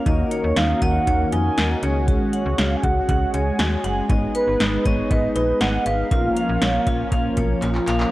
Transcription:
0.00 1.79 A#3 medium
0.00 4.06 C#4 medium
0.06 0.24 D#2 loud
0.06 1.81 D#3 medium
0.06 1.79 A#3 medium
0.06 1.79 D#4 medium
0.06 1.79 F#4 medium
0.06 4.06 F#4 medium
0.06 1.79 A#4 medium
0.06 0.29 D#5 medium
0.06 kick loud
0.06 closed hi-hat medium
0.31 0.58 C#5 medium
0.31 0.54 C#5 medium
0.31 closed hi-hat medium
0.44 0.53 D#2 medium
0.57 0.74 D#2 loud
0.57 0.79 D#4 medium
0.57 0.81 F5 medium
0.57 snare loud
0.57 closed hi-hat medium
0.82 0.99 D#2 loud
0.82 1.04 D#5 medium
0.82 1.29 F#5 loud
0.82 kick medium
0.82 closed hi-hat medium
1.07 1.25 D#2 loud
1.07 1.30 C#5 medium
1.07 kick medium
1.07 closed hi-hat medium
1.32 1.50 F2 medium
1.32 1.55 D#4 medium
1.32 1.79 G#5 loud
1.32 closed hi-hat medium
1.57 1.75 D#2 loud
1.57 1.80 D#5 medium
1.57 snare loud
1.57 closed hi-hat medium
1.83 2.18 C#2 loud
1.83 4.06 G#3 medium
1.83 6.07 G#3 medium
1.83 4.06 C#4 medium
1.83 4.06 F#4 medium
1.83 4.06 G#4 medium
1.83 2.05 C#5 medium
1.83 2.06 G#5 medium
1.83 closed hi-hat medium
2.08 2.30 F#4 medium
2.08 kick loud
2.08 closed hi-hat medium
2.33 2.60 C#5 medium
2.33 2.56 F#5 medium
2.33 closed hi-hat medium
2.46 2.55 C#2 medium
2.58 2.76 C#2 loud
2.58 2.81 C#5 medium
2.58 2.76 F5 medium
2.58 snare loud
2.58 closed hi-hat medium
2.77 2.85 G#5 medium
2.83 3.01 C#2 loud
2.83 3.06 F#4 medium
2.83 3.35 F#5 loud
2.83 kick medium
2.83 closed hi-hat medium
3.09 3.26 C#2 loud
3.09 3.31 F#5 medium
3.09 kick medium
3.09 closed hi-hat medium
3.34 3.52 C#2 medium
3.34 3.57 C#5 medium
3.34 3.84 G#5 loud
3.34 closed hi-hat medium
3.59 3.77 D#2 medium
3.59 3.82 F#4 medium
3.59 snare loud
3.59 closed hi-hat medium
3.84 4.02 F#1 medium
3.84 4.07 F#5 medium
3.84 4.08 G#5 medium
3.84 closed hi-hat medium
4.10 4.27 G#1 loud
4.10 6.07 G#3 medium
4.10 6.07 B3 medium
4.10 6.09 B3 medium
4.10 6.07 D#4 medium
4.10 6.09 D#4 medium
4.10 6.07 G#4 medium
4.10 4.32 D#5 medium
4.10 kick loud
4.10 closed hi-hat medium
4.35 4.57 B4 medium
4.35 4.87 B4 medium
4.35 closed hi-hat medium
4.47 4.56 G#1 medium
4.60 4.78 G#1 loud
4.60 4.83 D#4 medium
4.60 snare loud
4.60 closed hi-hat medium
4.85 5.03 G#1 loud
4.85 5.12 C#5 medium
4.85 5.08 D#5 loud
4.85 kick medium
4.85 closed hi-hat medium
5.10 5.28 G#1 loud
5.10 5.33 B4 medium
5.10 5.35 D#5 loud
5.10 kick medium
5.10 closed hi-hat medium
5.36 5.53 A#1 medium
5.36 5.58 D#4 medium
5.36 5.59 B4 medium
5.36 closed hi-hat medium
5.61 5.78 G#1 loud
5.61 5.83 D#5 medium
5.61 5.84 F#5 loud
5.61 snare loud
5.61 closed hi-hat medium
5.86 6.04 G#1 loud
5.86 6.09 B4 medium
5.86 7.59 F5 loud
5.86 closed hi-hat medium
6.11 6.29 A#1 loud
6.11 8.11 F3 medium
6.11 8.09 A#3 medium
6.11 8.11 A#3 medium
6.11 8.09 C#4 medium
6.11 8.11 C#4 medium
6.11 6.34 F4 medium
6.11 8.09 F4 medium
6.11 8.09 A#4 medium
6.11 kick loud
6.11 closed hi-hat medium
6.36 6.59 F5 medium
6.36 closed hi-hat medium
6.49 6.58 A#1 loud
6.62 6.79 A#1 loud
6.62 6.84 C#5 medium
6.62 snare loud
6.62 closed hi-hat medium
6.87 7.04 A#1 loud
6.87 7.09 F4 medium
6.87 kick medium
6.87 closed hi-hat medium
7.12 7.30 A#1 loud
7.12 7.35 F5 medium
7.12 kick medium
7.12 closed hi-hat medium
7.37 7.55 B1 medium
7.37 7.60 C#5 medium
7.37 kick medium
7.37 closed hi-hat medium
7.62 7.80 A#1 loud
7.62 7.85 F4 medium
7.62 clap medium
7.62 closed hi-hat medium
7.75 clap medium
7.88 8.05 A#1 medium
7.88 8.10 F5 medium
7.88 clap medium
7.88 closed hi-hat medium
8.00 clap medium

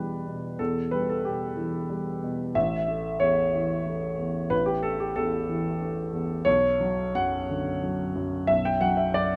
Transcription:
0.00 0.55 E2 soft
0.00 0.27 B2 soft
0.00 0.13 E3 soft
0.00 0.61 G3 soft
0.00 0.59 B4 medium
0.00 0.62 D5 medium
0.27 0.79 B2 soft
0.59 2.51 E2 medium
0.59 0.92 A4 medium
0.91 1.44 G3 soft
0.91 1.08 B4 medium
1.09 1.25 A4 medium
1.25 1.77 B2 soft
1.25 2.23 G4 medium
1.56 2.09 E3 soft
1.90 2.42 G3 soft
2.22 2.55 B2 soft
2.55 4.48 A1 medium
2.55 3.21 E5 medium
2.88 3.41 A3 soft
3.20 3.73 E2 soft
3.20 4.51 C#5 medium
3.55 4.06 E3 soft
3.86 4.39 A3 soft
4.18 4.71 E2 soft
4.50 6.41 A1 medium
4.50 4.67 B4 medium
4.66 4.83 G4 medium
4.83 5.36 A3 soft
4.83 5.00 A4 medium
5.00 5.17 G4 medium
5.16 5.68 E2 soft
5.16 6.13 A4 medium
5.49 6.00 E3 soft
5.82 6.33 A3 soft
6.13 6.46 E2 soft
6.45 8.45 B1 medium
6.45 7.16 C#5 medium
6.80 7.37 F#3 soft
7.15 7.69 F#2 soft
7.15 8.49 F#5 medium
7.49 8.02 D3 soft
7.83 8.36 F#3 soft
8.15 8.69 F#2 soft
8.47 9.36 B1 medium
8.47 8.65 E5 medium
8.65 8.82 G5 medium
8.81 9.34 F#3 soft
8.81 8.98 F#5 medium
8.97 9.14 E5 medium
9.14 9.36 F#2 soft
9.14 9.36 D5 medium

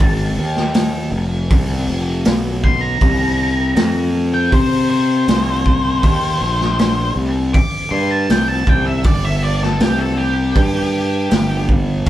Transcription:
0.00 0.36 G#1 medium
0.00 0.73 A5 loud
0.00 kick loud
0.38 1.10 D#2 medium
0.56 snare soft
0.74 snare loud
0.74 open hi-hat medium
1.12 1.48 F1 medium
1.50 1.86 C2 medium
1.50 kick loud
1.50 open hi-hat medium
1.88 2.24 F1 medium
2.25 2.98 B1 medium
2.25 snare loud
2.25 open hi-hat medium
2.64 2.81 C6 medium
2.64 kick medium
2.81 4.29 A#5 loud
3.01 3.73 C2 loud
3.01 kick loud
3.01 open hi-hat medium
3.76 4.49 F2 medium
3.76 snare loud
3.76 open hi-hat medium
4.34 4.53 G5 medium
4.52 5.24 C3 loud
4.52 4.89 C5 medium
4.52 kick loud
4.52 open hi-hat medium
4.90 7.13 C5 loud
5.28 6.00 C2 medium
5.28 snare loud
5.28 open hi-hat medium
5.66 kick medium
6.03 6.39 D#2 loud
6.03 kick loud
6.03 open hi-hat medium
6.41 7.13 A#1 medium
6.61 snare soft
6.79 snare loud
6.79 open hi-hat medium
7.16 7.52 C2 medium
7.54 7.91 D6 loud
7.54 kick loud
7.54 open hi-hat soft
7.91 8.27 G2 medium
7.91 8.11 C6 medium
8.11 8.29 A5 medium
8.30 8.65 C2 medium
8.30 8.48 G5 medium
8.30 snare loud
8.30 open hi-hat medium
8.48 8.69 A5 medium
8.67 9.03 C2 medium
8.67 8.87 G5 medium
8.67 kick medium
8.86 9.06 E5 medium
9.04 9.77 G1 medium
9.04 9.25 D5 medium
9.04 kick loud
9.04 open hi-hat medium
9.25 9.43 E5 loud
9.44 9.62 D5 medium
9.62 9.81 A4 medium
9.62 snare soft
9.80 10.52 C2 medium
9.80 10.00 G4 medium
9.80 snare loud
9.80 open hi-hat medium
9.99 10.18 A4 medium
10.17 11.65 G4 medium
10.56 11.28 G2 medium
10.56 kick loud
10.56 open hi-hat medium
11.31 12.03 G1 medium
11.31 snare loud
11.31 open hi-hat medium
11.69 kick medium
12.06 open hi-hat medium

